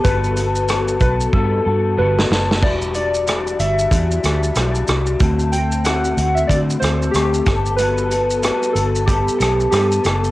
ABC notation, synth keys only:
X:1
M:4/4
L:1/16
Q:"Swing 16ths" 1/4=93
K:G
V:1 name="Synth keys"
B6 B2 A4 B4 | d2 d4 e8 z2 | z2 g2 f3 e d2 c2 G4 | B6 A2 G4 G4 |]